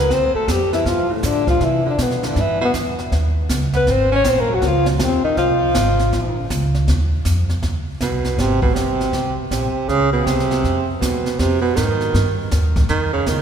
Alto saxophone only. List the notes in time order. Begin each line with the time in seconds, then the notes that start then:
0.00 B4
0.13 C5
0.36 A4
0.52 G4
0.74 E4
0.89 F4
1.14 A3
1.26 D4
1.50 F4
1.65 E4
1.89 D4
2.03 B3
2.25 D4
2.41 E4
2.65 B3
3.77 B4
3.92 C5
4.16 C#5
4.30 C5
4.40 A#4
4.54 F#4
4.67 F4
4.89 G#3
5.03 C4
5.24 D#4
5.38 F4